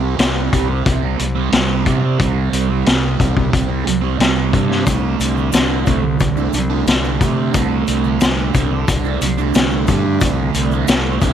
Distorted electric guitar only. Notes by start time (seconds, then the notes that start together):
Already playing: C3
0.00 G3 C4
0.17 C3 G3 C4
0.51 C3 G3 C4
0.68 muted distorted electric guitar stroke
1.02 G3 C4
1.19 muted distorted electric guitar stroke
1.35 G3 C4
1.51 C3 G3 C4
1.85 C3 G3 C4
2.02 G3 C4
2.18 C3 G3 C4
2.69 G3 C4
2.85 C3 G3 C4
3.19 C3 G3 C4
3.36 muted distorted electric guitar stroke
3.68 G3 C4
3.85 muted distorted electric guitar stroke
4.01 G3 C4
4.18 C3 G3 C4
4.51 C3 G3 C4
4.68 G3 C4
4.85 D3 A3 D4
5.35 A3 D4
5.52 D3 A3 D4
5.86 D3 A3 D4
6.04 muted distorted electric guitar stroke
6.37 A3 D4
6.54 muted distorted electric guitar stroke
6.70 A3 D4
6.86 D3 A3 D4
7.21 D3 A3 D4
7.36 A3 D4
7.53 D3 A3 D4
8.04 A3 D4
8.20 D3 A3 D4
8.54 D3 A3 D4
8.72 muted distorted electric guitar stroke
9.04 A3 D4
9.22 muted distorted electric guitar stroke
9.38 A3 D4
9.55 D3 A3 D4
9.88 D3 A3 D4
10.04 A3 D4
10.21 D3 A3 D4
10.72 A3 D4
10.88 D3 A3 D4
11.21 D3 A3 D4